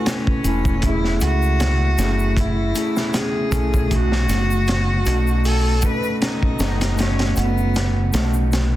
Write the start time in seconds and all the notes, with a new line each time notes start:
Already playing: A3 C#4 E4 F#4 A4 B4 G#5
0.05 C#4, snare, closed hi-hat, shaker
0.27 kick
0.44 E1 A3 C#4 E4 G#5, closed hi-hat, shaker
0.65 kick, shaker
0.80 A3 C#4, kick, closed hi-hat, shaker
0.85 E4 G#4
1.04 snare
1.21 C#2 F#4 F#5, closed hi-hat, shaker
1.42 shaker
1.60 snare, closed hi-hat, shaker
1.97 F#1 A3 C#4 E4 G#4, snare, closed hi-hat, shaker
2.19 shaker
2.37 E4, kick, closed hi-hat, shaker
2.74 A3 C#4 E4 G#4, closed hi-hat, shaker
2.96 snare, shaker
3.13 C#4 G#4, snare, closed hi-hat, shaker
3.50 B1 A3 C#4 E4 A4 G#5, kick, closed hi-hat, shaker
3.74 kick, shaker
3.87 A3 C#4 F#4, kick, closed hi-hat, shaker
3.93 D#4 F#4
4.12 snare
4.29 F#1, snare, closed hi-hat, shaker
4.50 shaker
4.67 snare, closed hi-hat, shaker
5.04 B1 A3 C#4 D#4 F#4, closed hi-hat, shaker
5.27 shaker
5.44 A4, open hi-hat, shaker
5.81 A3 C#4 D#4 F#4 B4, kick, closed hi-hat, shaker
6.03 shaker
6.21 C#4 D#4, snare, closed hi-hat, shaker
6.43 kick
6.58 F#1 A3 C#4 D#4, snare, closed hi-hat, shaker
6.62 F#4
6.81 snare, closed hi-hat, shaker
6.94 A3 C#4, shaker
6.99 C#4 D#4 F#4, snare, closed hi-hat
7.19 snare, closed hi-hat
7.36 F#1 B3 F#5, closed hi-hat, shaker
7.58 shaker
7.74 snare, closed hi-hat, shaker
8.12 B1 A3 C#4 D#4 F#4, snare, closed hi-hat, shaker
8.33 shaker
8.52 B3, snare, closed hi-hat, shaker